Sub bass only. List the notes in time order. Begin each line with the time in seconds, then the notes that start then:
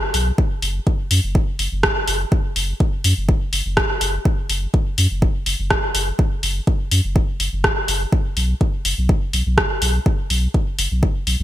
0.14 B1
0.62 F#1
1.11 F#2
1.24 F#1
1.59 F#1
1.72 F#1
2.08 F#1
2.56 F#1
3.04 F#2
3.17 F#1
3.53 F#1
3.66 F#1
4.01 F#1
4.50 F#1
4.98 F#2
5.11 F#1
5.46 F#1
5.59 F#1
5.95 F#1
6.43 F#1
6.92 F#2
7.05 F#1
7.40 F#1
7.53 F#1
7.88 F#1
8.37 B1
8.85 F#1
8.98 B1
9.33 B1
9.47 B1
9.82 B1
10.30 B1
10.79 F#1
10.92 B1
11.27 B1
11.40 B1